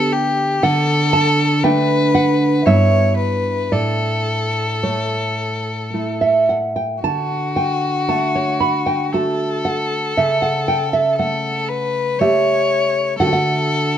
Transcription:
0.00 0.59 D3 medium
0.00 0.59 B3 medium
0.00 0.59 G4 medium
0.00 0.14 A4 medium
0.00 0.59 D5 loud
0.13 0.64 G4 medium
0.62 2.63 D3 medium
0.62 1.65 A4 medium
0.62 1.11 F#5 loud
1.13 1.61 A5 medium
1.63 2.62 A3 soft
1.63 2.63 D4 medium
1.63 2.67 B4 medium
1.63 2.13 G5 medium
2.15 2.64 F#5 medium
2.66 3.69 G2 medium
2.66 3.68 B3 soft
2.66 3.68 E4 soft
2.66 3.16 C#5 medium
2.66 3.68 E5 medium
3.17 3.73 B4 medium
3.71 6.99 A2 medium
3.71 6.48 A4 medium
3.71 4.79 D5 medium
4.83 5.92 A3 soft
4.83 5.89 C#5 medium
5.94 6.99 A3 soft
5.94 7.00 E4 soft
6.21 6.49 E5 medium
6.49 6.76 F#5 medium
6.76 7.03 G5 medium
7.04 10.13 D3 soft
7.04 9.14 F#4 medium
7.04 7.54 A5 medium
7.56 8.06 G5 medium
8.08 9.12 A3 soft
8.08 8.34 A5 medium
8.35 8.61 C#5 medium
8.60 8.86 B5 medium
8.86 9.12 G5 medium
9.13 10.13 A3 soft
9.13 10.14 F#4 soft
9.13 11.18 A4 medium
9.13 9.63 A5 medium
9.65 10.15 F#5 medium
10.17 13.16 C#3 medium
10.17 10.42 E5 medium
10.42 10.67 F#5 medium
10.68 10.93 G5 medium
10.93 11.18 E5 medium
11.19 12.20 A3 soft
11.19 11.70 A4 medium
11.19 12.17 F#5 medium
11.69 12.21 B4 medium
12.19 13.16 A3 soft
12.19 13.16 G4 soft
12.19 13.18 C#5 medium
12.19 13.16 E5 medium
13.19 13.98 D3 medium
13.19 13.98 A3 soft
13.19 13.98 F#4 soft
13.19 13.98 A4 medium
13.19 13.26 F#5 medium
13.27 13.32 G5 medium
13.33 13.98 F#5 medium

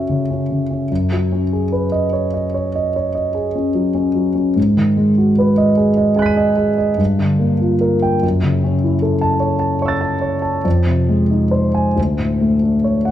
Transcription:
0.00 0.87 F#2 soft
0.00 0.21 C#4 soft
0.00 0.92 F#4 soft
0.00 0.93 C#5 soft
0.00 0.93 E5 soft
0.09 0.42 C#3 soft
0.30 0.63 C#4 soft
0.51 0.82 C#3 soft
0.71 0.90 C#4 soft
0.92 4.53 F#2 soft
1.12 1.43 F#3 soft
1.32 1.63 C#4 soft
1.53 1.84 G#4 soft
1.72 2.04 B4 soft
1.92 2.25 D#5 soft
2.13 2.46 C#5 soft
2.34 2.67 D#5 soft
2.54 2.87 C#5 soft
2.75 3.08 D#5 soft
2.96 3.28 C#5 soft
3.15 3.48 D#5 soft
3.35 3.68 G#4 soft
3.55 3.88 C#4 soft
3.75 4.08 F#3 soft
3.95 4.28 C#4 soft
4.15 4.48 F#3 soft
4.35 4.56 C#4 soft
4.56 6.95 G#2 soft
4.77 5.10 D#3 soft
4.97 5.30 G#3 soft
5.18 5.51 F#4 soft
5.38 5.71 B4 soft
5.58 5.90 D#5 soft
5.77 6.10 G#4 soft
5.97 6.30 D#5 soft
6.16 6.49 G#4 soft
6.16 6.95 G#5 soft
6.16 6.96 F#6 soft
6.22 6.97 B6 soft
6.22 6.99 D#7 soft
6.37 6.70 D#5 soft
6.56 6.90 G#4 soft
6.78 6.99 D#5 soft
6.97 8.19 G2 soft
7.19 7.53 D3 soft
7.39 7.73 A#3 soft
7.60 7.94 F4 soft
7.81 8.14 A#4 soft
8.02 8.23 G5 soft
8.23 10.61 F#2 soft
8.43 8.75 C#3 soft
8.64 8.95 C#4 soft
8.84 9.14 E4 soft
9.02 9.34 A4 soft
9.21 9.53 A5 soft
9.40 9.73 C#5 soft
9.59 9.93 A5 soft
9.82 10.15 C#5 soft
9.82 10.61 C#6 soft
9.82 10.63 E6 soft
9.88 10.64 A6 soft
10.01 10.35 A5 soft
10.21 10.56 C#5 soft
10.42 10.64 A5 soft
10.65 11.93 F2 soft
10.87 11.21 C3 soft
11.09 11.44 G#3 soft
11.31 11.66 D#4 soft
11.51 11.88 C5 soft
11.75 11.97 G#5 soft
11.96 13.11 D2 soft
12.18 12.54 A2 soft
12.41 12.75 A3 soft
12.62 12.96 D4 soft
12.84 13.11 C#5 soft
13.05 13.11 F#5 soft

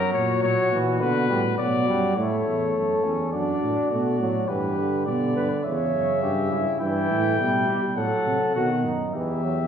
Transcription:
0.00 0.12 F#2 medium
0.00 0.38 F#3 medium
0.00 1.55 F#4 medium
0.00 0.13 A#4 loud
0.14 0.42 A#2 medium
0.14 0.42 C#5 medium
0.43 0.56 A#2 medium
0.43 0.71 F#3 medium
0.43 0.80 C#5 medium
0.72 1.00 A#2 medium
0.72 1.02 E3 medium
1.00 1.29 B2 medium
1.00 1.29 D3 medium
1.00 1.55 B4 medium
1.30 1.58 A2 medium
1.30 1.43 G3 medium
1.58 1.88 B2 medium
1.58 1.87 F#3 medium
1.58 2.16 F#4 medium
1.58 2.16 D5 medium
1.88 2.17 F#2 medium
1.88 2.17 G3 medium
2.16 2.44 A2 medium
2.16 3.06 A3 medium
2.16 2.71 E4 medium
2.16 3.29 C#5 medium
2.46 2.75 E2 medium
2.76 3.04 F#2 medium
2.76 3.35 A4 medium
3.04 3.35 E2 medium
3.04 3.32 C#4 medium
3.33 3.62 F#2 medium
3.33 3.90 D4 medium
3.33 4.48 F#4 medium
3.33 3.90 D5 medium
3.63 3.76 A2 medium
3.91 4.22 B2 medium
3.91 4.19 A3 medium
3.91 4.50 D5 medium
4.20 4.49 A2 medium
4.20 4.51 F#3 medium
4.48 5.09 G2 medium
4.48 4.80 E3 medium
4.48 5.34 G4 medium
4.48 5.06 B4 medium
4.79 5.07 D3 medium
5.07 5.36 B2 medium
5.07 5.64 D3 medium
5.07 5.64 D5 medium
5.36 5.49 G2 medium
5.36 5.49 B4 medium
5.64 5.94 E2 medium
5.64 6.79 C#3 medium
5.64 6.22 C#5 medium
5.64 6.78 E5 medium
5.94 6.25 F#2 medium
6.22 6.52 G2 medium
6.22 6.51 G4 medium
6.52 6.66 G2 medium
6.52 6.80 E4 medium
6.80 7.10 G2 medium
6.80 7.38 E3 medium
6.80 7.66 E4 medium
6.80 7.94 G5 medium
7.10 7.39 A2 medium
7.39 7.68 B2 medium
7.39 7.96 G3 medium
7.68 7.81 B2 medium
7.68 7.81 G4 medium
7.97 8.10 A2 medium
7.97 8.54 F#3 medium
7.97 8.54 A4 medium
7.97 8.54 F#5 medium
8.26 8.39 C3 medium
8.55 8.86 B2 medium
8.55 8.92 D#3 medium
8.55 8.69 F#4 medium
8.55 8.93 F#5 medium
8.85 9.16 F#2 medium
8.85 9.14 D#4 medium
9.14 9.67 E2 medium
9.14 9.42 E3 medium
9.14 9.67 G4 medium
9.14 9.67 E5 medium
9.44 9.57 F#3 medium

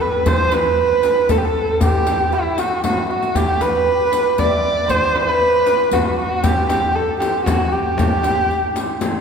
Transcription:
0.00 1.81 G4 medium
0.00 1.31 A4 medium
0.00 0.34 B4 medium
0.00 0.29 B4 medium
0.14 tombak ka soft
0.26 0.55 C5 loud
0.26 0.59 C5 medium
0.26 riq medium
0.26 tombak dum loud
0.26 frame drum medium
0.52 3.26 B4 medium
0.52 1.32 B4 loud
0.52 riq soft
0.52 tombak tek medium
0.52 frame drum medium
1.03 riq soft
1.03 tombak tek medium
1.03 frame drum medium
1.29 1.39 A4 medium
1.29 1.44 A4 medium
1.29 riq medium
1.29 frame drum medium
1.29 tombak dum loud
1.38 1.47 G4 medium
1.45 4.37 A4 medium
1.45 1.82 A4 medium
1.68 tombak ka soft
1.80 1.90 G4 medium
1.80 2.36 G4 loud
1.80 riq medium
1.80 frame drum medium
1.80 tombak dum loud
1.90 1.97 G4 medium
1.97 2.05 G4 medium
2.05 2.12 G4 medium
2.05 riq soft
2.05 tombak tek medium
2.05 frame drum medium
2.12 2.19 G4 medium
2.19 2.65 G4 medium
2.32 5.81 E4 medium
2.32 2.60 E4 medium
2.32 riq soft
2.58 2.84 F#4 medium
2.58 riq soft
2.58 tombak tek medium
2.58 frame drum medium
2.84 3.10 F#4 medium
2.84 3.09 F#4 medium
2.84 riq medium
2.84 tombak tek medium
2.84 frame drum medium
2.97 tombak ka medium
3.10 3.37 F#4 medium
3.10 3.43 F#4 medium
3.10 tombak tek medium
3.22 riq soft
3.22 tombak ka medium
3.35 3.63 G4 loud
3.35 5.99 G4 medium
3.35 riq medium
3.35 frame drum medium
3.35 tombak dum loud
3.61 4.41 B4 loud
3.61 3.69 B4 medium
3.61 riq soft
3.61 tombak tek medium
3.61 frame drum medium
3.69 3.77 B4 medium
3.77 3.84 B4 medium
3.85 3.92 B4 soft
3.92 3.98 B4 medium
3.99 4.06 B4 soft
4.07 4.13 B4 medium
4.12 4.20 B4 medium
4.12 riq soft
4.12 tombak tek medium
4.12 frame drum medium
4.21 4.94 B4 medium
4.38 4.50 D5 medium
4.38 4.92 D5 loud
4.38 riq soft
4.38 tombak dum medium
4.38 frame drum medium
4.45 6.75 E5 medium
4.51 6.97 D5 medium
4.78 tombak ka soft
4.88 5.21 C5 medium
4.88 5.17 C5 loud
4.88 riq soft
4.88 frame drum medium
4.88 tombak dum medium
5.15 5.28 B4 medium
5.15 5.28 C5 loud
5.15 tombak tek medium
5.15 frame drum medium
5.22 5.35 C5 medium
5.28 5.95 B4 loud
5.28 8.03 B4 medium
5.67 riq soft
5.67 tombak tek medium
5.67 frame drum medium
5.91 6.19 F#4 medium
5.91 6.18 F#4 medium
5.91 riq medium
5.91 frame drum medium
5.91 tombak dum medium
6.19 6.45 F#4 medium
6.19 6.50 F#4 medium
6.31 tombak ka soft
6.43 6.69 G4 loud
6.43 6.70 G4 medium
6.43 riq medium
6.43 tombak dum medium
6.43 frame drum medium
6.69 6.97 G4 medium
6.69 7.53 G4 medium
6.69 riq soft
6.69 tombak tek medium
6.69 frame drum medium
6.95 7.20 A4 medium
6.95 9.21 A4 medium
7.20 7.45 G4 medium
7.20 riq soft
7.20 tombak tek medium
7.20 frame drum medium
7.45 7.73 F#4 medium
7.45 7.78 F#4 medium
7.45 riq medium
7.45 frame drum medium
7.45 tombak dum medium
7.72 9.01 G4 medium
7.72 9.21 G4 medium
7.86 tombak ka soft
7.98 riq medium
7.98 frame drum loud
7.98 tombak dum medium
8.23 riq soft
8.23 tombak tek medium
8.23 frame drum medium
8.51 riq soft
8.76 riq medium
8.76 tombak tek medium
8.76 frame drum medium
9.01 riq medium
9.01 tombak tek medium
9.01 frame drum medium
9.15 tombak ka medium

